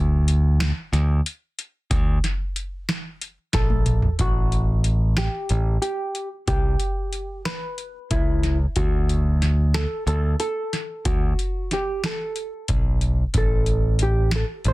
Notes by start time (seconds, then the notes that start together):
Already playing: D2
0.28 closed hi-hat
0.60 snare, closed hi-hat
0.93 D2, snare, closed hi-hat
1.26 closed hi-hat
1.59 closed hi-hat
1.91 D2, kick, closed hi-hat
2.24 snare, closed hi-hat
2.56 closed hi-hat
2.89 snare, closed hi-hat
3.21 closed hi-hat
3.53 A#1 A4, kick, snare, closed hi-hat
3.70 high tom
3.86 closed hi-hat, mid tom
4.02 floor tom
4.19 A1 F#4, kick, closed hi-hat
4.52 closed hi-hat
4.84 closed hi-hat
5.17 G4, snare, closed hi-hat
5.49 A1, closed hi-hat
5.82 G4, closed hi-hat
6.15 closed hi-hat
6.47 C2 G4, kick, closed hi-hat
6.80 closed hi-hat
7.13 closed hi-hat
7.45 B4, snare, closed hi-hat
7.78 closed hi-hat
8.11 C#2 E4, kick, closed hi-hat
8.43 snare, closed hi-hat
8.76 D2 F#4, kick, closed hi-hat
9.09 closed hi-hat
9.42 snare, closed hi-hat
9.74 A4, snare, closed hi-hat
10.07 D2 A4, closed hi-hat
10.40 A4, closed hi-hat
10.73 snare, closed hi-hat
11.05 D2 F#4, kick, closed hi-hat
11.39 closed hi-hat
11.71 G4, snare, closed hi-hat
12.04 A4, snare, closed hi-hat
12.36 closed hi-hat
12.68 B1, kick, closed hi-hat
13.01 closed hi-hat
13.34 A1 A4, kick, closed hi-hat
13.66 closed hi-hat
13.99 G4, closed hi-hat
14.31 snare, closed hi-hat
14.36 A4
14.64 A1 C5, closed hi-hat